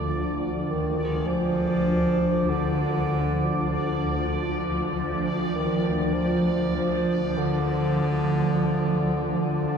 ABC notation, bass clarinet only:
X:1
M:4/4
L:1/16
Q:1/4=49
K:none
V:1 name="Bass clarinet" clef=bass
D,2 _E,2 F,4 D,4 D,3 z | z2 _E,2 F,2 F,2 D,6 D,2 |]